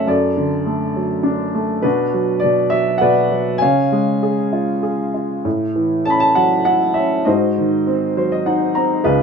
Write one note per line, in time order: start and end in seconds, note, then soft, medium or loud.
0.00 0.10 F#3 soft
0.00 0.10 A3 soft
0.00 0.10 F#4 soft
0.00 0.10 C#5 soft
0.07 1.80 F#2 soft
0.07 1.21 A4 soft
0.07 1.22 D5 medium
0.37 1.51 D3 soft
0.66 1.53 A3 soft
0.96 1.82 F#3 soft
1.23 1.82 D4 soft
1.55 1.84 A3 soft
1.82 2.42 B2 soft
1.82 2.68 D4 soft
1.82 2.68 F#4 soft
1.82 2.44 B4 medium
2.14 2.70 F#3 soft
2.40 2.68 D5 medium
2.44 3.00 B2 soft
2.70 3.30 F#3 soft
2.70 2.98 E5 medium
2.98 3.59 B2 soft
2.98 3.57 B4 medium
2.98 3.57 D5 medium
2.98 3.61 F#5 medium
3.32 3.61 F#3 soft
3.58 4.79 C#5 soft
3.58 4.79 F5 soft
3.58 4.77 G#5 medium
3.62 5.42 C#3 soft
3.92 5.11 G#3 soft
4.23 4.81 G#4 soft
4.53 5.13 F4 soft
4.83 5.43 G#4 soft
5.14 5.44 F4 soft
5.45 7.23 A2 soft
5.76 6.94 E3 soft
6.05 6.95 C#4 soft
6.05 6.12 A5 medium
6.10 6.18 B5 soft
6.20 6.35 A5 medium
6.35 7.24 F#3 soft
6.35 6.64 F#5 medium
6.65 7.26 E4 soft
6.65 6.94 F#5 medium
6.94 7.26 C#4 soft
6.94 7.27 E5 medium
7.25 9.01 G#2 soft
7.25 8.12 F#4 soft
7.25 8.12 C5 soft
7.25 7.81 D#5 soft
7.58 8.72 D#3 soft
7.87 8.74 C4 soft
8.17 9.03 F#3 soft
8.17 8.30 C5 soft
8.32 8.45 D#5 soft
8.46 9.04 D#4 soft
8.46 8.73 F#5 soft
8.75 9.04 C4 soft
8.75 9.03 A#5 soft
9.04 9.23 C#2 medium
9.04 9.23 F4 soft
9.04 9.23 G#4 soft
9.04 9.23 B4 medium